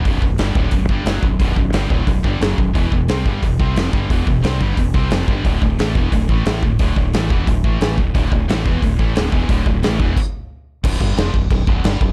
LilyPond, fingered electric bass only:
\new Staff \with { instrumentName = "Fingered electric bass" } { \clef bass \time 4/4 \key b \phrygian \tempo 4 = 178 b,,,8 b,,,8 g,,8 d,,8 b,,,8 g,,8 fis,,8 b,,,8 | b,,,8 b,,,8 g,,8 d,,8 b,,,8 g,,8 fis,,8 b,,,8 | e,,8 e,,8 c,8 g,,8 e,,8 c,8 eis,,8 g,,8 | e,,8 e,,8 c,8 g,,8 e,,8 c,8 eis,,8 g,,8 |
d,,8 d,,8 a,,8 e,,8 d,,8 a,,8 a,,8 d,,8 | d,,8 d,,8 a,,8 e,,8 d,,8 a,,8 a,,8 d,,8 | d,,8 d,,8 a,,8 e,,8 d,,8 a,,8 d,,8 e,,8 | d,,8 d,,8 a,,8 e,,8 r2 |
b,,,8 g,,8 eis,,8 b,,,8 b,,,8 b,,,8 g,,8 b,,,8 | }